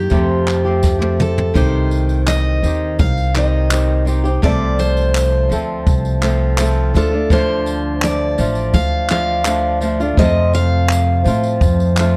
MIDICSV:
0, 0, Header, 1, 5, 480
1, 0, Start_track
1, 0, Tempo, 718563
1, 1038, Time_signature, 4, 2, 24, 8
1, 8128, End_track
2, 0, Start_track
2, 0, Title_t, "Steel-string acoustic guitar"
2, 0, Program_c, 0, 25
2, 0, Note_on_c, 0, 67, 79
2, 776, Note_off_c, 0, 67, 0
2, 812, Note_on_c, 0, 69, 69
2, 1041, Note_off_c, 0, 69, 0
2, 1044, Note_on_c, 0, 72, 78
2, 1518, Note_off_c, 0, 72, 0
2, 1520, Note_on_c, 0, 75, 88
2, 1998, Note_off_c, 0, 75, 0
2, 2001, Note_on_c, 0, 77, 95
2, 2223, Note_off_c, 0, 77, 0
2, 2247, Note_on_c, 0, 75, 72
2, 2697, Note_off_c, 0, 75, 0
2, 2966, Note_on_c, 0, 74, 104
2, 3203, Note_on_c, 0, 72, 88
2, 3210, Note_off_c, 0, 74, 0
2, 4135, Note_off_c, 0, 72, 0
2, 4652, Note_on_c, 0, 69, 77
2, 4891, Note_off_c, 0, 69, 0
2, 4894, Note_on_c, 0, 72, 91
2, 5369, Note_on_c, 0, 74, 91
2, 5382, Note_off_c, 0, 72, 0
2, 5837, Note_off_c, 0, 74, 0
2, 5840, Note_on_c, 0, 77, 103
2, 6077, Note_off_c, 0, 77, 0
2, 6085, Note_on_c, 0, 77, 92
2, 6536, Note_off_c, 0, 77, 0
2, 6805, Note_on_c, 0, 75, 100
2, 7042, Note_off_c, 0, 75, 0
2, 7045, Note_on_c, 0, 77, 105
2, 7974, Note_off_c, 0, 77, 0
2, 8128, End_track
3, 0, Start_track
3, 0, Title_t, "Nylon-string guitar"
3, 0, Program_c, 1, 24
3, 0, Note_on_c, 1, 51, 52
3, 0, Note_on_c, 1, 58, 51
3, 0, Note_on_c, 1, 63, 59
3, 67, Note_on_c, 1, 41, 66
3, 72, Note_on_c, 1, 48, 70
3, 73, Note_off_c, 1, 51, 0
3, 74, Note_off_c, 1, 63, 0
3, 75, Note_off_c, 1, 58, 0
3, 76, Note_on_c, 1, 53, 63
3, 77, Note_on_c, 1, 57, 68
3, 81, Note_on_c, 1, 60, 72
3, 84, Note_on_c, 1, 67, 73
3, 424, Note_off_c, 1, 67, 0
3, 432, Note_off_c, 1, 41, 0
3, 432, Note_on_c, 1, 67, 57
3, 434, Note_off_c, 1, 60, 0
3, 435, Note_off_c, 1, 48, 0
3, 437, Note_off_c, 1, 53, 0
3, 438, Note_off_c, 1, 57, 0
3, 442, Note_on_c, 1, 60, 53
3, 446, Note_on_c, 1, 57, 45
3, 451, Note_on_c, 1, 53, 45
3, 654, Note_off_c, 1, 67, 0
3, 662, Note_off_c, 1, 60, 0
3, 662, Note_on_c, 1, 67, 52
3, 670, Note_on_c, 1, 60, 51
3, 671, Note_off_c, 1, 57, 0
3, 677, Note_off_c, 1, 53, 0
3, 679, Note_on_c, 1, 57, 46
3, 685, Note_on_c, 1, 53, 46
3, 1026, Note_off_c, 1, 60, 0
3, 1027, Note_on_c, 1, 48, 82
3, 1029, Note_off_c, 1, 53, 0
3, 1030, Note_off_c, 1, 67, 0
3, 1031, Note_off_c, 1, 57, 0
3, 1032, Note_on_c, 1, 51, 77
3, 1034, Note_on_c, 1, 60, 81
3, 1037, Note_on_c, 1, 63, 84
3, 1043, Note_on_c, 1, 67, 82
3, 1745, Note_off_c, 1, 51, 0
3, 1753, Note_off_c, 1, 48, 0
3, 1753, Note_on_c, 1, 51, 49
3, 1758, Note_off_c, 1, 63, 0
3, 1759, Note_off_c, 1, 60, 0
3, 1761, Note_off_c, 1, 67, 0
3, 1761, Note_on_c, 1, 60, 52
3, 1768, Note_on_c, 1, 63, 58
3, 1773, Note_on_c, 1, 67, 59
3, 2224, Note_off_c, 1, 51, 0
3, 2232, Note_on_c, 1, 51, 57
3, 2237, Note_off_c, 1, 60, 0
3, 2238, Note_off_c, 1, 63, 0
3, 2239, Note_on_c, 1, 60, 56
3, 2243, Note_off_c, 1, 67, 0
3, 2246, Note_on_c, 1, 63, 54
3, 2251, Note_on_c, 1, 67, 62
3, 2464, Note_off_c, 1, 51, 0
3, 2470, Note_off_c, 1, 60, 0
3, 2472, Note_on_c, 1, 51, 52
3, 2478, Note_off_c, 1, 63, 0
3, 2478, Note_on_c, 1, 60, 56
3, 2484, Note_off_c, 1, 67, 0
3, 2486, Note_on_c, 1, 63, 61
3, 2492, Note_on_c, 1, 67, 61
3, 2698, Note_off_c, 1, 51, 0
3, 2705, Note_off_c, 1, 60, 0
3, 2706, Note_on_c, 1, 51, 53
3, 2713, Note_off_c, 1, 63, 0
3, 2713, Note_on_c, 1, 60, 53
3, 2718, Note_off_c, 1, 67, 0
3, 2721, Note_on_c, 1, 63, 51
3, 2726, Note_on_c, 1, 67, 55
3, 2822, Note_off_c, 1, 67, 0
3, 2830, Note_on_c, 1, 67, 53
3, 2833, Note_off_c, 1, 51, 0
3, 2833, Note_off_c, 1, 63, 0
3, 2837, Note_off_c, 1, 60, 0
3, 2841, Note_on_c, 1, 63, 46
3, 2851, Note_on_c, 1, 60, 39
3, 2953, Note_off_c, 1, 60, 0
3, 2954, Note_on_c, 1, 48, 85
3, 2955, Note_off_c, 1, 67, 0
3, 2955, Note_on_c, 1, 53, 78
3, 2959, Note_off_c, 1, 63, 0
3, 2960, Note_on_c, 1, 57, 79
3, 2961, Note_on_c, 1, 60, 80
3, 2965, Note_on_c, 1, 69, 80
3, 3668, Note_off_c, 1, 53, 0
3, 3670, Note_on_c, 1, 53, 55
3, 3675, Note_off_c, 1, 57, 0
3, 3676, Note_off_c, 1, 60, 0
3, 3677, Note_off_c, 1, 48, 0
3, 3677, Note_on_c, 1, 57, 62
3, 3684, Note_on_c, 1, 60, 60
3, 3686, Note_off_c, 1, 69, 0
3, 3689, Note_on_c, 1, 69, 56
3, 4147, Note_off_c, 1, 53, 0
3, 4150, Note_on_c, 1, 53, 61
3, 4155, Note_off_c, 1, 60, 0
3, 4157, Note_off_c, 1, 57, 0
3, 4160, Note_on_c, 1, 57, 66
3, 4163, Note_on_c, 1, 60, 63
3, 4166, Note_off_c, 1, 69, 0
3, 4169, Note_on_c, 1, 69, 64
3, 4387, Note_off_c, 1, 53, 0
3, 4393, Note_off_c, 1, 57, 0
3, 4395, Note_on_c, 1, 53, 68
3, 4400, Note_off_c, 1, 60, 0
3, 4401, Note_on_c, 1, 57, 64
3, 4405, Note_off_c, 1, 69, 0
3, 4408, Note_on_c, 1, 60, 70
3, 4416, Note_on_c, 1, 69, 61
3, 4627, Note_off_c, 1, 53, 0
3, 4635, Note_off_c, 1, 57, 0
3, 4635, Note_on_c, 1, 53, 52
3, 4643, Note_on_c, 1, 57, 51
3, 4644, Note_off_c, 1, 60, 0
3, 4648, Note_off_c, 1, 69, 0
3, 4649, Note_on_c, 1, 62, 58
3, 4656, Note_on_c, 1, 65, 67
3, 4745, Note_off_c, 1, 65, 0
3, 4753, Note_on_c, 1, 65, 50
3, 4755, Note_off_c, 1, 62, 0
3, 4758, Note_off_c, 1, 53, 0
3, 4762, Note_off_c, 1, 57, 0
3, 4763, Note_on_c, 1, 62, 46
3, 4774, Note_on_c, 1, 57, 41
3, 4877, Note_off_c, 1, 65, 0
3, 4878, Note_off_c, 1, 57, 0
3, 4878, Note_on_c, 1, 50, 75
3, 4880, Note_off_c, 1, 62, 0
3, 4881, Note_on_c, 1, 53, 86
3, 4886, Note_on_c, 1, 57, 79
3, 4888, Note_on_c, 1, 62, 88
3, 4893, Note_on_c, 1, 65, 88
3, 5593, Note_off_c, 1, 53, 0
3, 5596, Note_on_c, 1, 53, 61
3, 5599, Note_off_c, 1, 50, 0
3, 5600, Note_off_c, 1, 62, 0
3, 5601, Note_off_c, 1, 57, 0
3, 5603, Note_on_c, 1, 57, 59
3, 5608, Note_on_c, 1, 62, 57
3, 5611, Note_off_c, 1, 65, 0
3, 5614, Note_on_c, 1, 65, 67
3, 6074, Note_off_c, 1, 53, 0
3, 6077, Note_on_c, 1, 53, 54
3, 6080, Note_off_c, 1, 57, 0
3, 6081, Note_off_c, 1, 62, 0
3, 6083, Note_on_c, 1, 57, 64
3, 6089, Note_on_c, 1, 62, 65
3, 6093, Note_off_c, 1, 65, 0
3, 6096, Note_on_c, 1, 65, 66
3, 6301, Note_off_c, 1, 53, 0
3, 6309, Note_on_c, 1, 53, 60
3, 6310, Note_off_c, 1, 57, 0
3, 6315, Note_off_c, 1, 62, 0
3, 6318, Note_on_c, 1, 57, 61
3, 6323, Note_off_c, 1, 65, 0
3, 6323, Note_on_c, 1, 62, 57
3, 6332, Note_on_c, 1, 65, 65
3, 6543, Note_off_c, 1, 53, 0
3, 6551, Note_on_c, 1, 53, 57
3, 6555, Note_off_c, 1, 57, 0
3, 6560, Note_off_c, 1, 62, 0
3, 6563, Note_on_c, 1, 57, 65
3, 6566, Note_off_c, 1, 65, 0
3, 6568, Note_on_c, 1, 62, 61
3, 6573, Note_on_c, 1, 65, 62
3, 6671, Note_off_c, 1, 65, 0
3, 6675, Note_off_c, 1, 53, 0
3, 6679, Note_on_c, 1, 65, 56
3, 6681, Note_off_c, 1, 57, 0
3, 6682, Note_off_c, 1, 62, 0
3, 6690, Note_on_c, 1, 62, 48
3, 6698, Note_on_c, 1, 57, 40
3, 6798, Note_on_c, 1, 41, 78
3, 6799, Note_off_c, 1, 65, 0
3, 6800, Note_off_c, 1, 57, 0
3, 6801, Note_on_c, 1, 48, 80
3, 6805, Note_off_c, 1, 62, 0
3, 6805, Note_on_c, 1, 53, 82
3, 6808, Note_on_c, 1, 57, 87
3, 6811, Note_on_c, 1, 60, 91
3, 6814, Note_on_c, 1, 65, 86
3, 7508, Note_off_c, 1, 53, 0
3, 7511, Note_on_c, 1, 53, 55
3, 7513, Note_off_c, 1, 57, 0
3, 7518, Note_off_c, 1, 41, 0
3, 7519, Note_off_c, 1, 48, 0
3, 7520, Note_off_c, 1, 60, 0
3, 7521, Note_on_c, 1, 57, 60
3, 7528, Note_on_c, 1, 60, 66
3, 7529, Note_off_c, 1, 65, 0
3, 7532, Note_on_c, 1, 65, 68
3, 7992, Note_off_c, 1, 53, 0
3, 7995, Note_off_c, 1, 57, 0
3, 7995, Note_on_c, 1, 53, 64
3, 8003, Note_off_c, 1, 60, 0
3, 8003, Note_on_c, 1, 57, 69
3, 8011, Note_on_c, 1, 60, 66
3, 8015, Note_off_c, 1, 65, 0
3, 8017, Note_on_c, 1, 65, 75
3, 8128, Note_off_c, 1, 53, 0
3, 8128, Note_off_c, 1, 57, 0
3, 8128, Note_off_c, 1, 60, 0
3, 8128, Note_off_c, 1, 65, 0
3, 8128, End_track
4, 0, Start_track
4, 0, Title_t, "Upright bass"
4, 0, Program_c, 2, 32
4, 78, Note_on_c, 2, 41, 87
4, 1011, Note_off_c, 2, 41, 0
4, 1038, Note_on_c, 2, 36, 92
4, 1732, Note_off_c, 2, 36, 0
4, 1757, Note_on_c, 2, 39, 71
4, 1979, Note_off_c, 2, 39, 0
4, 2002, Note_on_c, 2, 36, 90
4, 2934, Note_off_c, 2, 36, 0
4, 2963, Note_on_c, 2, 36, 80
4, 3655, Note_off_c, 2, 36, 0
4, 3682, Note_on_c, 2, 38, 70
4, 3902, Note_off_c, 2, 38, 0
4, 3919, Note_on_c, 2, 36, 90
4, 4613, Note_off_c, 2, 36, 0
4, 4640, Note_on_c, 2, 38, 86
4, 5573, Note_off_c, 2, 38, 0
4, 5602, Note_on_c, 2, 33, 85
4, 5822, Note_off_c, 2, 33, 0
4, 5836, Note_on_c, 2, 38, 96
4, 6771, Note_off_c, 2, 38, 0
4, 6799, Note_on_c, 2, 41, 85
4, 7492, Note_off_c, 2, 41, 0
4, 7520, Note_on_c, 2, 45, 83
4, 7740, Note_off_c, 2, 45, 0
4, 7757, Note_on_c, 2, 41, 94
4, 8128, Note_off_c, 2, 41, 0
4, 8128, End_track
5, 0, Start_track
5, 0, Title_t, "Drums"
5, 66, Note_on_c, 9, 54, 37
5, 76, Note_on_c, 9, 36, 109
5, 133, Note_off_c, 9, 54, 0
5, 143, Note_off_c, 9, 36, 0
5, 317, Note_on_c, 9, 54, 38
5, 319, Note_on_c, 9, 39, 82
5, 383, Note_off_c, 9, 54, 0
5, 385, Note_off_c, 9, 39, 0
5, 552, Note_on_c, 9, 54, 71
5, 558, Note_on_c, 9, 36, 106
5, 560, Note_on_c, 9, 38, 51
5, 619, Note_off_c, 9, 54, 0
5, 625, Note_off_c, 9, 36, 0
5, 627, Note_off_c, 9, 38, 0
5, 679, Note_on_c, 9, 48, 50
5, 746, Note_off_c, 9, 48, 0
5, 799, Note_on_c, 9, 54, 46
5, 800, Note_on_c, 9, 45, 77
5, 866, Note_off_c, 9, 54, 0
5, 867, Note_off_c, 9, 45, 0
5, 921, Note_on_c, 9, 43, 74
5, 987, Note_off_c, 9, 43, 0
5, 1038, Note_on_c, 9, 36, 112
5, 1038, Note_on_c, 9, 54, 43
5, 1105, Note_off_c, 9, 36, 0
5, 1105, Note_off_c, 9, 54, 0
5, 1277, Note_on_c, 9, 54, 41
5, 1344, Note_off_c, 9, 54, 0
5, 1397, Note_on_c, 9, 54, 28
5, 1464, Note_off_c, 9, 54, 0
5, 1520, Note_on_c, 9, 39, 95
5, 1525, Note_on_c, 9, 54, 75
5, 1587, Note_off_c, 9, 39, 0
5, 1592, Note_off_c, 9, 54, 0
5, 1761, Note_on_c, 9, 54, 49
5, 1828, Note_off_c, 9, 54, 0
5, 1996, Note_on_c, 9, 54, 44
5, 1999, Note_on_c, 9, 36, 114
5, 2063, Note_off_c, 9, 54, 0
5, 2066, Note_off_c, 9, 36, 0
5, 2122, Note_on_c, 9, 54, 30
5, 2188, Note_off_c, 9, 54, 0
5, 2239, Note_on_c, 9, 54, 42
5, 2241, Note_on_c, 9, 39, 84
5, 2306, Note_off_c, 9, 54, 0
5, 2308, Note_off_c, 9, 39, 0
5, 2477, Note_on_c, 9, 54, 78
5, 2480, Note_on_c, 9, 39, 109
5, 2543, Note_off_c, 9, 54, 0
5, 2547, Note_off_c, 9, 39, 0
5, 2719, Note_on_c, 9, 54, 47
5, 2786, Note_off_c, 9, 54, 0
5, 2840, Note_on_c, 9, 54, 28
5, 2907, Note_off_c, 9, 54, 0
5, 2960, Note_on_c, 9, 36, 101
5, 2960, Note_on_c, 9, 54, 46
5, 3027, Note_off_c, 9, 36, 0
5, 3027, Note_off_c, 9, 54, 0
5, 3200, Note_on_c, 9, 54, 48
5, 3267, Note_off_c, 9, 54, 0
5, 3319, Note_on_c, 9, 54, 30
5, 3386, Note_off_c, 9, 54, 0
5, 3442, Note_on_c, 9, 39, 99
5, 3450, Note_on_c, 9, 54, 76
5, 3509, Note_off_c, 9, 39, 0
5, 3517, Note_off_c, 9, 54, 0
5, 3686, Note_on_c, 9, 54, 49
5, 3753, Note_off_c, 9, 54, 0
5, 3919, Note_on_c, 9, 36, 112
5, 3919, Note_on_c, 9, 54, 45
5, 3985, Note_off_c, 9, 36, 0
5, 3986, Note_off_c, 9, 54, 0
5, 4041, Note_on_c, 9, 54, 29
5, 4108, Note_off_c, 9, 54, 0
5, 4160, Note_on_c, 9, 39, 92
5, 4161, Note_on_c, 9, 54, 44
5, 4227, Note_off_c, 9, 39, 0
5, 4228, Note_off_c, 9, 54, 0
5, 4395, Note_on_c, 9, 39, 106
5, 4395, Note_on_c, 9, 54, 78
5, 4462, Note_off_c, 9, 39, 0
5, 4462, Note_off_c, 9, 54, 0
5, 4644, Note_on_c, 9, 54, 49
5, 4711, Note_off_c, 9, 54, 0
5, 4878, Note_on_c, 9, 36, 112
5, 4885, Note_on_c, 9, 54, 47
5, 4945, Note_off_c, 9, 36, 0
5, 4952, Note_off_c, 9, 54, 0
5, 5118, Note_on_c, 9, 54, 60
5, 5125, Note_off_c, 9, 54, 0
5, 5125, Note_on_c, 9, 54, 49
5, 5192, Note_off_c, 9, 54, 0
5, 5359, Note_on_c, 9, 39, 101
5, 5373, Note_on_c, 9, 54, 74
5, 5426, Note_off_c, 9, 39, 0
5, 5440, Note_off_c, 9, 54, 0
5, 5598, Note_on_c, 9, 54, 64
5, 5602, Note_off_c, 9, 54, 0
5, 5602, Note_on_c, 9, 54, 48
5, 5669, Note_off_c, 9, 54, 0
5, 5712, Note_on_c, 9, 54, 30
5, 5779, Note_off_c, 9, 54, 0
5, 5835, Note_on_c, 9, 54, 44
5, 5837, Note_on_c, 9, 36, 105
5, 5902, Note_off_c, 9, 54, 0
5, 5903, Note_off_c, 9, 36, 0
5, 6076, Note_on_c, 9, 39, 89
5, 6076, Note_on_c, 9, 54, 65
5, 6083, Note_off_c, 9, 54, 0
5, 6083, Note_on_c, 9, 54, 43
5, 6143, Note_off_c, 9, 39, 0
5, 6150, Note_off_c, 9, 54, 0
5, 6313, Note_on_c, 9, 54, 81
5, 6314, Note_on_c, 9, 39, 112
5, 6380, Note_off_c, 9, 54, 0
5, 6381, Note_off_c, 9, 39, 0
5, 6556, Note_on_c, 9, 54, 68
5, 6560, Note_off_c, 9, 54, 0
5, 6560, Note_on_c, 9, 54, 47
5, 6627, Note_off_c, 9, 54, 0
5, 6684, Note_on_c, 9, 54, 30
5, 6751, Note_off_c, 9, 54, 0
5, 6796, Note_on_c, 9, 36, 106
5, 6803, Note_on_c, 9, 54, 52
5, 6863, Note_off_c, 9, 36, 0
5, 6870, Note_off_c, 9, 54, 0
5, 7036, Note_on_c, 9, 54, 58
5, 7044, Note_off_c, 9, 54, 0
5, 7044, Note_on_c, 9, 54, 47
5, 7110, Note_off_c, 9, 54, 0
5, 7277, Note_on_c, 9, 39, 101
5, 7294, Note_on_c, 9, 54, 80
5, 7344, Note_off_c, 9, 39, 0
5, 7361, Note_off_c, 9, 54, 0
5, 7518, Note_on_c, 9, 54, 64
5, 7529, Note_off_c, 9, 54, 0
5, 7529, Note_on_c, 9, 54, 48
5, 7596, Note_off_c, 9, 54, 0
5, 7638, Note_on_c, 9, 54, 32
5, 7705, Note_off_c, 9, 54, 0
5, 7756, Note_on_c, 9, 36, 115
5, 7759, Note_on_c, 9, 54, 44
5, 7823, Note_off_c, 9, 36, 0
5, 7826, Note_off_c, 9, 54, 0
5, 7883, Note_on_c, 9, 54, 33
5, 7950, Note_off_c, 9, 54, 0
5, 7996, Note_on_c, 9, 39, 97
5, 7996, Note_on_c, 9, 54, 58
5, 8001, Note_off_c, 9, 54, 0
5, 8001, Note_on_c, 9, 54, 45
5, 8063, Note_off_c, 9, 39, 0
5, 8068, Note_off_c, 9, 54, 0
5, 8128, End_track
0, 0, End_of_file